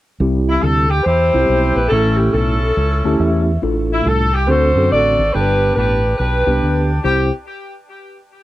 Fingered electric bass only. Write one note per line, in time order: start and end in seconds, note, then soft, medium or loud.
0.20 0.57 C2 medium
0.63 0.99 D2 medium
1.06 1.29 E2 medium
1.34 1.47 C2 medium
1.49 1.72 B1 medium
1.76 1.89 A#1 medium
1.91 2.28 A1 loud
2.34 2.71 B1 medium
2.77 3.01 C#2 medium
3.05 3.18 D2 medium
3.20 3.56 E2 medium
3.63 3.99 A1 loud
4.05 4.48 C2 medium
4.48 4.72 D2 loud
4.75 4.89 F#2 medium
4.92 5.15 A1 medium
5.19 5.32 G#1 medium
5.35 5.71 G1 loud
5.77 6.13 A1 medium
6.19 6.42 B1 medium
6.47 6.59 C2 medium
6.62 6.98 D2 medium
7.04 7.30 C2 medium